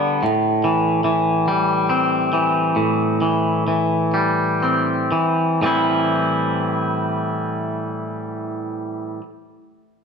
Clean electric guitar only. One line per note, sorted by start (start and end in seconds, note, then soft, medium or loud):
0.00 0.22 D3 soft
0.00 0.26 G3 soft
0.00 0.22 B3 soft
0.23 2.76 A2 soft
0.64 1.04 E3 soft
1.04 2.32 E3 soft
1.48 3.68 G3 soft
1.89 4.15 C4 soft
2.33 3.20 E3 soft
2.76 5.12 A2 soft
3.22 3.67 E3 soft
3.68 5.10 E3 soft
4.14 5.63 G3 soft
4.63 5.63 C4 soft
5.12 5.62 E3 soft
5.62 9.19 A2 soft
5.62 9.21 E3 soft
5.62 9.22 G3 soft
5.62 9.23 C4 soft
5.66 9.24 E4 soft